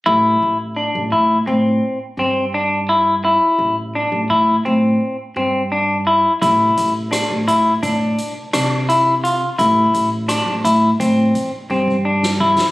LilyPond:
<<
  \new Staff \with { instrumentName = "Clean electric guitar" } { \time 9/8 \key a \minor \tempo 4. = 57 e'4 d'8 e'8 c'4 c'8 d'8 e'8 | e'4 d'8 e'8 c'4 c'8 d'8 e'8 | e'4 d'8 e'8 d'4 d'8 e'8 f'8 | e'4 d'8 e'8 c'4 c'8 d'8 e'8 | }
  \new Staff \with { instrumentName = "Upright bass" } { \clef bass \time 9/8 \key a \minor a,,8 a,,8. a,,16 a,8 a,8 r8 g,4.~ | g,8 a,,8. a,,16 a,8 a,8 r8 g,4. | a,,8 a,,8. a,,16 a,8 a,8 r8 c4. | a,,8 a,,8. a,,16 a,8 a,8 r8 g,4. | }
  \new DrumStaff \with { instrumentName = "Drums" } \drummode { \time 9/8 r4 r4 r4 r4. | r4 r4 r4 r4. | <hh bd>8 hh8 <hh ss>8 hh8 <hh bd>8 hh8 <hh ss>8 hh8 hh8 | <hh bd>8 hh8 <hh ss>8 hh8 <hh bd>8 <hh bd>8 bd16 bd8 sn16 bd16 sn16 | }
>>